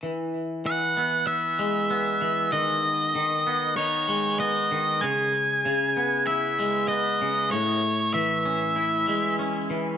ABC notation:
X:1
M:4/4
L:1/8
Q:1/4=96
K:E
V:1 name="Lead electric guitar"
z2 f2 e4 | d4 c2 d2 | g4 e2 d2 | c2 e4 z2 |]
V:2 name="Clean electric guitar" clef=bass
E,2 E, B,2 G, B, E, | D,2 D, B, D G, B, D, | C,2 C, B, E G, B, C, | A,,2 E, C E G, C E, |]